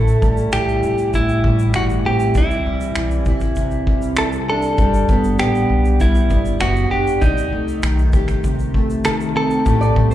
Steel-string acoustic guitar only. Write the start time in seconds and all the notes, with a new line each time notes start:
Already playing: A2 A3 E4
0.22 G3
0.53 E3
0.84 E4
1.15 A2
1.45 G3
1.75 E3
2.07 C4
2.37 E4
2.67 G3
2.98 E3
3.28 E4
3.58 C3
3.89 G3
4.19 E3
4.50 D4
4.80 G3
5.10 B3
5.40 B3
6.00 G3
6.31 B3
6.61 B3
6.92 D4
7.23 G4
7.53 A3
7.83 D#3
8.14 G4
8.44 C3
8.74 A3
9.05 D#3
9.35 C4
9.65 A2 G4
9.95 G3